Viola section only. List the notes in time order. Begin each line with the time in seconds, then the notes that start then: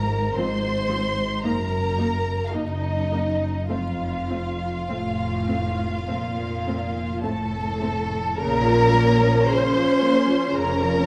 0.37 F3 C4
0.89 F3 C4
1.44 A#3 D#4
1.99 A#3 D#4
2.54 A#3 D#4
3.12 A#3 D#4
3.70 A3 C4
4.31 A3 C4
4.90 A3 C4
5.49 A3 C4
6.09 A3 C4
6.67 A3 C4
7.24 A3 C4
7.82 A3 C4
8.39 C#3 C#4
8.67 F3
8.94 A#3
9.22 F3
9.48 C#3
9.75 F3
10.02 A#3
10.29 F3
10.54 C#3
10.80 F3